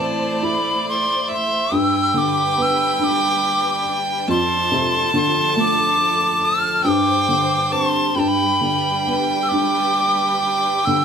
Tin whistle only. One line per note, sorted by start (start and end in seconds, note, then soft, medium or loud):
0.00 0.45 A5 medium
0.44 0.87 B5 medium
0.89 1.28 C6 medium
1.34 1.77 C6 medium
1.75 2.19 E6 medium
2.18 2.64 D6 medium
2.62 3.05 E6 medium
3.04 3.98 D6 medium
4.31 5.10 C6 medium
5.16 5.54 C6 medium
5.60 6.47 D6 loud
6.45 6.91 F6 medium
6.89 7.74 D6 medium
7.72 8.18 C6 medium
8.16 8.29 A5 medium
8.16 8.21 B5 medium
8.28 9.16 B5 medium
9.43 9.50 E6 medium
9.49 10.39 D6 medium
10.40 10.87 D6 medium
10.85 11.05 E6 medium